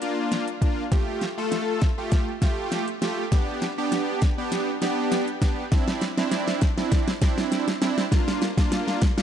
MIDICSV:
0, 0, Header, 1, 3, 480
1, 0, Start_track
1, 0, Key_signature, -1, "major"
1, 0, Tempo, 600000
1, 736, Time_signature, 4, 2, 24, 8
1, 7378, End_track
2, 0, Start_track
2, 0, Title_t, "Analog polysynth"
2, 0, Program_c, 0, 90
2, 13, Note_on_c, 0, 58, 86
2, 15, Note_on_c, 0, 62, 76
2, 17, Note_on_c, 0, 65, 96
2, 364, Note_off_c, 0, 58, 0
2, 366, Note_off_c, 0, 62, 0
2, 367, Note_off_c, 0, 65, 0
2, 493, Note_on_c, 0, 58, 81
2, 495, Note_on_c, 0, 62, 80
2, 496, Note_on_c, 0, 65, 93
2, 670, Note_off_c, 0, 58, 0
2, 671, Note_off_c, 0, 62, 0
2, 672, Note_off_c, 0, 65, 0
2, 732, Note_on_c, 0, 57, 87
2, 734, Note_on_c, 0, 65, 79
2, 737, Note_on_c, 0, 67, 96
2, 993, Note_off_c, 0, 57, 0
2, 994, Note_off_c, 0, 65, 0
2, 996, Note_off_c, 0, 67, 0
2, 1100, Note_on_c, 0, 57, 88
2, 1102, Note_on_c, 0, 65, 78
2, 1105, Note_on_c, 0, 69, 100
2, 1439, Note_off_c, 0, 57, 0
2, 1440, Note_off_c, 0, 65, 0
2, 1442, Note_off_c, 0, 69, 0
2, 1581, Note_on_c, 0, 57, 86
2, 1582, Note_on_c, 0, 65, 79
2, 1586, Note_on_c, 0, 67, 92
2, 1839, Note_off_c, 0, 57, 0
2, 1839, Note_off_c, 0, 65, 0
2, 1841, Note_off_c, 0, 67, 0
2, 1935, Note_on_c, 0, 57, 88
2, 1937, Note_on_c, 0, 65, 82
2, 1938, Note_on_c, 0, 67, 100
2, 2286, Note_off_c, 0, 57, 0
2, 2286, Note_off_c, 0, 65, 0
2, 2287, Note_off_c, 0, 67, 0
2, 2413, Note_on_c, 0, 57, 85
2, 2414, Note_on_c, 0, 65, 75
2, 2417, Note_on_c, 0, 67, 92
2, 2590, Note_off_c, 0, 57, 0
2, 2591, Note_off_c, 0, 65, 0
2, 2592, Note_off_c, 0, 67, 0
2, 2653, Note_on_c, 0, 59, 86
2, 2656, Note_on_c, 0, 62, 79
2, 2658, Note_on_c, 0, 67, 96
2, 2913, Note_off_c, 0, 59, 0
2, 2915, Note_off_c, 0, 62, 0
2, 2916, Note_off_c, 0, 67, 0
2, 3022, Note_on_c, 0, 59, 84
2, 3024, Note_on_c, 0, 62, 77
2, 3026, Note_on_c, 0, 67, 99
2, 3360, Note_off_c, 0, 59, 0
2, 3361, Note_off_c, 0, 62, 0
2, 3362, Note_off_c, 0, 67, 0
2, 3501, Note_on_c, 0, 59, 84
2, 3504, Note_on_c, 0, 62, 77
2, 3506, Note_on_c, 0, 67, 95
2, 3759, Note_off_c, 0, 59, 0
2, 3760, Note_off_c, 0, 62, 0
2, 3761, Note_off_c, 0, 67, 0
2, 3855, Note_on_c, 0, 59, 87
2, 3857, Note_on_c, 0, 62, 83
2, 3859, Note_on_c, 0, 67, 98
2, 4206, Note_off_c, 0, 59, 0
2, 4207, Note_off_c, 0, 62, 0
2, 4208, Note_off_c, 0, 67, 0
2, 4333, Note_on_c, 0, 59, 84
2, 4335, Note_on_c, 0, 62, 78
2, 4336, Note_on_c, 0, 67, 89
2, 4510, Note_off_c, 0, 59, 0
2, 4512, Note_off_c, 0, 62, 0
2, 4512, Note_off_c, 0, 67, 0
2, 4576, Note_on_c, 0, 60, 82
2, 4578, Note_on_c, 0, 62, 76
2, 4579, Note_on_c, 0, 64, 99
2, 4835, Note_off_c, 0, 60, 0
2, 4836, Note_off_c, 0, 62, 0
2, 4837, Note_off_c, 0, 64, 0
2, 4941, Note_on_c, 0, 60, 88
2, 4943, Note_on_c, 0, 62, 81
2, 4945, Note_on_c, 0, 64, 96
2, 5280, Note_off_c, 0, 60, 0
2, 5281, Note_off_c, 0, 62, 0
2, 5281, Note_off_c, 0, 64, 0
2, 5420, Note_on_c, 0, 60, 86
2, 5422, Note_on_c, 0, 62, 78
2, 5424, Note_on_c, 0, 64, 95
2, 5678, Note_off_c, 0, 60, 0
2, 5679, Note_off_c, 0, 62, 0
2, 5680, Note_off_c, 0, 64, 0
2, 5774, Note_on_c, 0, 60, 84
2, 5776, Note_on_c, 0, 62, 84
2, 5778, Note_on_c, 0, 64, 102
2, 6125, Note_off_c, 0, 60, 0
2, 6126, Note_off_c, 0, 62, 0
2, 6127, Note_off_c, 0, 64, 0
2, 6251, Note_on_c, 0, 60, 82
2, 6254, Note_on_c, 0, 62, 81
2, 6256, Note_on_c, 0, 64, 97
2, 6430, Note_off_c, 0, 60, 0
2, 6431, Note_off_c, 0, 62, 0
2, 6432, Note_off_c, 0, 64, 0
2, 6490, Note_on_c, 0, 58, 88
2, 6493, Note_on_c, 0, 62, 80
2, 6496, Note_on_c, 0, 65, 96
2, 6752, Note_off_c, 0, 58, 0
2, 6753, Note_off_c, 0, 62, 0
2, 6755, Note_off_c, 0, 65, 0
2, 6859, Note_on_c, 0, 58, 89
2, 6861, Note_on_c, 0, 62, 81
2, 6862, Note_on_c, 0, 65, 98
2, 7198, Note_off_c, 0, 58, 0
2, 7200, Note_off_c, 0, 62, 0
2, 7200, Note_off_c, 0, 65, 0
2, 7338, Note_on_c, 0, 58, 82
2, 7340, Note_on_c, 0, 62, 75
2, 7341, Note_on_c, 0, 65, 96
2, 7378, Note_off_c, 0, 58, 0
2, 7378, Note_off_c, 0, 62, 0
2, 7378, Note_off_c, 0, 65, 0
2, 7378, End_track
3, 0, Start_track
3, 0, Title_t, "Drums"
3, 14, Note_on_c, 9, 42, 71
3, 94, Note_off_c, 9, 42, 0
3, 254, Note_on_c, 9, 38, 81
3, 254, Note_on_c, 9, 42, 80
3, 334, Note_off_c, 9, 38, 0
3, 334, Note_off_c, 9, 42, 0
3, 381, Note_on_c, 9, 42, 49
3, 461, Note_off_c, 9, 42, 0
3, 493, Note_on_c, 9, 36, 82
3, 495, Note_on_c, 9, 42, 78
3, 573, Note_off_c, 9, 36, 0
3, 575, Note_off_c, 9, 42, 0
3, 733, Note_on_c, 9, 38, 85
3, 734, Note_on_c, 9, 36, 122
3, 734, Note_on_c, 9, 42, 75
3, 813, Note_off_c, 9, 38, 0
3, 814, Note_off_c, 9, 36, 0
3, 814, Note_off_c, 9, 42, 0
3, 971, Note_on_c, 9, 42, 53
3, 973, Note_on_c, 9, 38, 83
3, 1051, Note_off_c, 9, 42, 0
3, 1053, Note_off_c, 9, 38, 0
3, 1214, Note_on_c, 9, 38, 86
3, 1214, Note_on_c, 9, 42, 93
3, 1294, Note_off_c, 9, 38, 0
3, 1294, Note_off_c, 9, 42, 0
3, 1452, Note_on_c, 9, 42, 76
3, 1454, Note_on_c, 9, 38, 86
3, 1455, Note_on_c, 9, 36, 89
3, 1532, Note_off_c, 9, 42, 0
3, 1534, Note_off_c, 9, 38, 0
3, 1535, Note_off_c, 9, 36, 0
3, 1693, Note_on_c, 9, 42, 85
3, 1694, Note_on_c, 9, 38, 84
3, 1695, Note_on_c, 9, 36, 98
3, 1773, Note_off_c, 9, 42, 0
3, 1774, Note_off_c, 9, 38, 0
3, 1775, Note_off_c, 9, 36, 0
3, 1934, Note_on_c, 9, 36, 88
3, 1934, Note_on_c, 9, 42, 76
3, 1935, Note_on_c, 9, 38, 90
3, 2014, Note_off_c, 9, 36, 0
3, 2014, Note_off_c, 9, 42, 0
3, 2015, Note_off_c, 9, 38, 0
3, 2174, Note_on_c, 9, 38, 91
3, 2174, Note_on_c, 9, 42, 83
3, 2254, Note_off_c, 9, 38, 0
3, 2254, Note_off_c, 9, 42, 0
3, 2301, Note_on_c, 9, 42, 51
3, 2381, Note_off_c, 9, 42, 0
3, 2415, Note_on_c, 9, 38, 94
3, 2415, Note_on_c, 9, 42, 77
3, 2495, Note_off_c, 9, 38, 0
3, 2495, Note_off_c, 9, 42, 0
3, 2654, Note_on_c, 9, 38, 94
3, 2655, Note_on_c, 9, 36, 121
3, 2655, Note_on_c, 9, 42, 76
3, 2734, Note_off_c, 9, 38, 0
3, 2735, Note_off_c, 9, 36, 0
3, 2735, Note_off_c, 9, 42, 0
3, 2894, Note_on_c, 9, 42, 53
3, 2896, Note_on_c, 9, 38, 88
3, 2974, Note_off_c, 9, 42, 0
3, 2976, Note_off_c, 9, 38, 0
3, 3135, Note_on_c, 9, 42, 90
3, 3136, Note_on_c, 9, 38, 95
3, 3215, Note_off_c, 9, 42, 0
3, 3216, Note_off_c, 9, 38, 0
3, 3373, Note_on_c, 9, 42, 75
3, 3375, Note_on_c, 9, 38, 98
3, 3376, Note_on_c, 9, 36, 94
3, 3453, Note_off_c, 9, 42, 0
3, 3455, Note_off_c, 9, 38, 0
3, 3456, Note_off_c, 9, 36, 0
3, 3614, Note_on_c, 9, 42, 88
3, 3615, Note_on_c, 9, 38, 96
3, 3694, Note_off_c, 9, 42, 0
3, 3695, Note_off_c, 9, 38, 0
3, 3854, Note_on_c, 9, 38, 98
3, 3854, Note_on_c, 9, 42, 73
3, 3934, Note_off_c, 9, 38, 0
3, 3934, Note_off_c, 9, 42, 0
3, 4094, Note_on_c, 9, 38, 98
3, 4094, Note_on_c, 9, 42, 80
3, 4174, Note_off_c, 9, 38, 0
3, 4174, Note_off_c, 9, 42, 0
3, 4221, Note_on_c, 9, 42, 52
3, 4301, Note_off_c, 9, 42, 0
3, 4333, Note_on_c, 9, 36, 80
3, 4333, Note_on_c, 9, 42, 76
3, 4334, Note_on_c, 9, 38, 99
3, 4413, Note_off_c, 9, 36, 0
3, 4413, Note_off_c, 9, 42, 0
3, 4414, Note_off_c, 9, 38, 0
3, 4574, Note_on_c, 9, 38, 94
3, 4574, Note_on_c, 9, 42, 81
3, 4575, Note_on_c, 9, 36, 119
3, 4654, Note_off_c, 9, 38, 0
3, 4654, Note_off_c, 9, 42, 0
3, 4655, Note_off_c, 9, 36, 0
3, 4701, Note_on_c, 9, 38, 102
3, 4781, Note_off_c, 9, 38, 0
3, 4811, Note_on_c, 9, 42, 56
3, 4813, Note_on_c, 9, 38, 105
3, 4891, Note_off_c, 9, 42, 0
3, 4893, Note_off_c, 9, 38, 0
3, 4940, Note_on_c, 9, 38, 102
3, 5020, Note_off_c, 9, 38, 0
3, 5052, Note_on_c, 9, 42, 94
3, 5053, Note_on_c, 9, 38, 108
3, 5132, Note_off_c, 9, 42, 0
3, 5133, Note_off_c, 9, 38, 0
3, 5181, Note_on_c, 9, 38, 103
3, 5261, Note_off_c, 9, 38, 0
3, 5291, Note_on_c, 9, 42, 77
3, 5293, Note_on_c, 9, 38, 103
3, 5295, Note_on_c, 9, 36, 89
3, 5371, Note_off_c, 9, 42, 0
3, 5373, Note_off_c, 9, 38, 0
3, 5375, Note_off_c, 9, 36, 0
3, 5420, Note_on_c, 9, 38, 101
3, 5500, Note_off_c, 9, 38, 0
3, 5533, Note_on_c, 9, 42, 87
3, 5534, Note_on_c, 9, 38, 101
3, 5535, Note_on_c, 9, 36, 100
3, 5613, Note_off_c, 9, 42, 0
3, 5614, Note_off_c, 9, 38, 0
3, 5615, Note_off_c, 9, 36, 0
3, 5661, Note_on_c, 9, 38, 113
3, 5741, Note_off_c, 9, 38, 0
3, 5772, Note_on_c, 9, 42, 77
3, 5773, Note_on_c, 9, 38, 110
3, 5774, Note_on_c, 9, 36, 96
3, 5852, Note_off_c, 9, 42, 0
3, 5853, Note_off_c, 9, 38, 0
3, 5854, Note_off_c, 9, 36, 0
3, 5902, Note_on_c, 9, 38, 104
3, 5982, Note_off_c, 9, 38, 0
3, 6014, Note_on_c, 9, 42, 85
3, 6015, Note_on_c, 9, 38, 107
3, 6094, Note_off_c, 9, 42, 0
3, 6095, Note_off_c, 9, 38, 0
3, 6142, Note_on_c, 9, 38, 109
3, 6142, Note_on_c, 9, 42, 52
3, 6222, Note_off_c, 9, 38, 0
3, 6222, Note_off_c, 9, 42, 0
3, 6253, Note_on_c, 9, 42, 76
3, 6254, Note_on_c, 9, 38, 108
3, 6333, Note_off_c, 9, 42, 0
3, 6334, Note_off_c, 9, 38, 0
3, 6382, Note_on_c, 9, 38, 109
3, 6462, Note_off_c, 9, 38, 0
3, 6495, Note_on_c, 9, 36, 121
3, 6495, Note_on_c, 9, 38, 112
3, 6495, Note_on_c, 9, 42, 82
3, 6575, Note_off_c, 9, 36, 0
3, 6575, Note_off_c, 9, 38, 0
3, 6575, Note_off_c, 9, 42, 0
3, 6623, Note_on_c, 9, 38, 111
3, 6703, Note_off_c, 9, 38, 0
3, 6733, Note_on_c, 9, 42, 55
3, 6735, Note_on_c, 9, 38, 111
3, 6813, Note_off_c, 9, 42, 0
3, 6815, Note_off_c, 9, 38, 0
3, 6860, Note_on_c, 9, 36, 91
3, 6861, Note_on_c, 9, 42, 49
3, 6863, Note_on_c, 9, 38, 108
3, 6940, Note_off_c, 9, 36, 0
3, 6941, Note_off_c, 9, 42, 0
3, 6943, Note_off_c, 9, 38, 0
3, 6974, Note_on_c, 9, 42, 90
3, 6975, Note_on_c, 9, 38, 112
3, 7054, Note_off_c, 9, 42, 0
3, 7055, Note_off_c, 9, 38, 0
3, 7102, Note_on_c, 9, 38, 108
3, 7182, Note_off_c, 9, 38, 0
3, 7212, Note_on_c, 9, 42, 76
3, 7214, Note_on_c, 9, 38, 115
3, 7215, Note_on_c, 9, 36, 92
3, 7292, Note_off_c, 9, 42, 0
3, 7294, Note_off_c, 9, 38, 0
3, 7295, Note_off_c, 9, 36, 0
3, 7342, Note_on_c, 9, 38, 117
3, 7378, Note_off_c, 9, 38, 0
3, 7378, End_track
0, 0, End_of_file